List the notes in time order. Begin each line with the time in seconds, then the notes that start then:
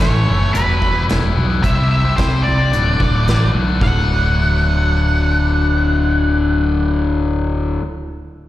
0.00 A1 A2 E3 A3 C#4 E4 A4 C#5, kick, snare, closed hi-hat
0.26 F#1 A3 C#4 E4 A4
0.41 A3 C#4 E4 A4
0.53 E1 E2 B2 E3 G3 B3 E4 B4, closed hi-hat
0.69 E3 G3 B3 E4
0.82 E1 E3 G3 B3 E4, kick
0.95 E3 G3 B3 E4
1.08 E1 E2 B2 E3 G3 B3 E4, snare, closed hi-hat
1.34 B1 E3 G3 B3 E4
1.48 E3 G3 B3 E4
1.61 C2 C3 G3 C4 E4 G4 C5 E5, kick, closed hi-hat
1.75 C4 E4 G4 C5
1.89 E5
2.04 C4 E4 G4 C5
2.17 C2 C3 G3 C4 E4 G4 C5, kick, snare, closed hi-hat
2.43 C4 E4 D5
2.47 C2 G4 C5
2.59 C4 E4 G4 C5
2.72 D1 D2 A2 D3 A3 F#4, closed hi-hat
2.86 D3 A3 F#4
2.98 D1 A2 D3 A3 F#4, kick
3.14 D3 A3 F#4
3.27 A1 D2 A2 D3 A3 F#4, snare, closed hi-hat
3.53 B1 A2 D3 A3 F#4
3.68 D3 A3 F#4
3.81 D1 D2 A2 D3 A3 F#5, kick
3.85 F#4